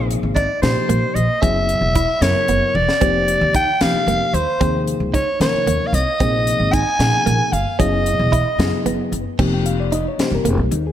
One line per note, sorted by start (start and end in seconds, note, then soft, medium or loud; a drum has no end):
0.00 0.16 A#1 medium
0.00 0.37 C3 medium
0.00 0.37 F3 medium
0.00 0.37 A#3 medium
0.00 0.38 D#4 medium
0.00 0.38 G#4 medium
0.11 closed hi-hat medium
0.23 0.45 G#1 medium
0.35 0.51 D#4 medium
0.35 0.60 D5 medium
0.35 kick medium
0.35 closed hi-hat medium
0.62 0.73 A#2 medium
0.62 1.17 C3 medium
0.62 1.17 F3 medium
0.62 1.17 A#3 medium
0.62 1.17 D#4 medium
0.62 1.17 G4 medium
0.62 1.16 C5 medium
0.62 snare loud
0.62 closed hi-hat medium
0.76 muted upright bass stroke soft
0.89 1.00 A#1 medium
0.89 1.04 A#3 medium
0.89 closed hi-hat medium
1.15 1.26 A#1 medium
1.15 1.43 D#5 medium
1.15 closed hi-hat medium
1.41 1.75 F#1 medium
1.41 1.97 C#3 medium
1.41 1.97 F#3 medium
1.41 1.97 B3 medium
1.41 1.57 C#4 medium
1.41 1.97 E4 medium
1.41 1.97 G#4 medium
1.41 2.24 E5 medium
1.41 kick loud
1.41 closed hi-hat medium
1.69 closed hi-hat medium
1.81 2.03 E1 medium
1.95 2.11 E4 medium
1.95 kick medium
1.95 closed hi-hat medium
2.21 2.32 F#2 medium
2.21 2.76 C#3 medium
2.21 2.77 F#3 soft
2.21 2.77 B3 medium
2.21 2.77 E4 medium
2.21 2.77 A#4 medium
2.21 2.77 C#5 medium
2.21 snare loud
2.21 closed hi-hat medium
2.35 muted upright bass stroke soft
2.48 2.59 F#1 medium
2.48 2.64 B3 medium
2.48 closed hi-hat medium
2.75 2.86 E1 medium
2.75 3.55 D5 medium
2.75 high tom medium
2.89 snare medium
3.01 3.34 F1 medium
3.01 3.56 C3 medium
3.01 3.56 F3 medium
3.01 3.56 A#3 medium
3.01 3.16 C4 medium
3.01 3.56 D#4 medium
3.01 3.57 G4 medium
3.01 kick loud
3.01 closed hi-hat medium
3.28 closed hi-hat medium
3.41 3.63 D#2 medium
3.54 3.70 D#4 medium
3.54 3.83 G5 loud
3.54 kick medium
3.54 closed hi-hat medium
3.81 3.92 F2 medium
3.81 4.36 C3 medium
3.81 4.36 F3 medium
3.81 4.36 A#3 medium
3.81 4.36 D#4 medium
3.81 4.36 G4 medium
3.81 4.36 F5 medium
3.81 snare loud
3.81 closed hi-hat medium
3.93 muted upright bass stroke soft
4.07 4.18 F1 medium
4.07 4.23 A#3 medium
4.07 closed hi-hat medium
4.33 4.45 D#2 medium
4.33 4.87 C5 medium
4.33 closed hi-hat medium
4.61 4.94 D#2 medium
4.61 5.15 C3 medium
4.61 5.15 F3 medium
4.61 5.16 A#3 medium
4.61 4.76 C4 medium
4.61 5.16 D#4 medium
4.61 5.16 G#4 medium
4.61 kick medium
4.61 closed hi-hat medium
4.88 closed hi-hat medium
5.00 5.22 C#2 medium
5.14 5.29 D#4 medium
5.14 5.38 C#5 medium
5.14 kick medium
5.14 closed hi-hat medium
5.40 5.95 C3 medium
5.40 5.51 D#3 medium
5.40 5.95 F3 medium
5.40 5.95 A#3 medium
5.40 5.95 D#4 medium
5.40 5.95 A#4 medium
5.40 5.88 C#5 medium
5.40 snare medium
5.40 closed hi-hat medium
5.53 muted upright bass stroke soft
5.66 5.77 D#2 medium
5.66 5.82 A#3 medium
5.66 closed hi-hat medium
5.87 5.96 F5 medium
5.93 6.04 C2 medium
5.93 6.75 D#5 medium
5.93 closed hi-hat medium
6.20 6.53 A#1 medium
6.20 6.75 C3 medium
6.20 6.75 F3 medium
6.20 6.75 A#3 medium
6.20 6.36 C4 medium
6.20 6.75 D#4 medium
6.20 6.75 G#4 medium
6.20 kick medium
6.20 closed hi-hat medium
6.47 closed hi-hat medium
6.60 6.82 G#1 medium
6.73 6.88 D#4 medium
6.73 7.54 G#5 loud
6.73 kick medium
6.73 closed hi-hat medium
6.99 7.10 A#2 medium
6.99 7.54 C3 medium
6.99 7.54 F3 medium
6.99 7.55 A#3 medium
6.99 7.54 D#4 medium
6.99 7.55 G#4 medium
6.99 snare loud
6.99 closed hi-hat medium
7.13 muted upright bass stroke soft
7.26 7.37 A#1 medium
7.26 7.41 A#3 medium
7.26 closed hi-hat medium
7.52 7.63 G1 medium
7.52 7.79 F5 medium
7.52 closed hi-hat medium
7.79 8.12 F#1 medium
7.79 8.34 C#3 medium
7.79 8.34 F#3 medium
7.79 8.34 B3 medium
7.79 7.94 C#4 medium
7.79 8.34 E4 medium
7.79 8.34 G#4 medium
7.79 8.82 D#5 medium
7.79 kick medium
7.79 closed hi-hat medium
8.06 closed hi-hat medium
8.19 8.41 E1 medium
8.32 8.48 E4 medium
8.32 kick medium
8.32 closed hi-hat medium
8.59 8.70 F#2 medium
8.59 9.14 C#3 medium
8.59 9.14 F#3 medium
8.59 9.14 B3 medium
8.59 9.14 E4 medium
8.59 9.14 G#4 medium
8.59 snare loud
8.59 closed hi-hat medium
8.72 muted upright bass stroke soft
8.85 8.96 F#1 medium
8.85 9.01 B3 medium
8.85 closed hi-hat medium
9.12 9.23 F#1 medium
9.12 closed hi-hat medium
9.39 10.04 F1 medium
9.39 9.94 C3 medium
9.39 9.94 F3 medium
9.39 9.94 A#3 medium
9.39 9.54 C4 medium
9.39 9.94 D#4 medium
9.39 9.94 G4 medium
9.39 kick loud
9.39 crash medium
9.54 9.66 G5 medium
9.66 9.78 F5 medium
9.66 closed hi-hat medium
9.80 9.92 D5 medium
9.92 10.07 D#4 medium
9.92 10.06 D#5 loud
9.92 closed hi-hat medium
10.08 10.20 C#5 medium
10.18 10.73 C3 medium
10.18 10.74 F3 medium
10.18 10.74 A#3 medium
10.18 10.71 D#4 medium
10.18 10.74 G4 medium
10.18 10.32 C5 medium
10.18 muted upright bass stroke soft
10.18 snare medium
10.18 closed hi-hat medium
10.31 10.42 F1 medium
10.31 10.46 A#4 medium
10.45 10.59 F1 medium
10.45 10.60 A#3 medium
10.45 closed hi-hat medium
10.49 10.60 G#4 medium
10.57 10.69 C2 medium
10.63 10.73 C4 soft
10.71 10.92 D#2 medium
10.71 10.85 D#4 medium
10.71 closed hi-hat medium
10.87 10.92 G#4 medium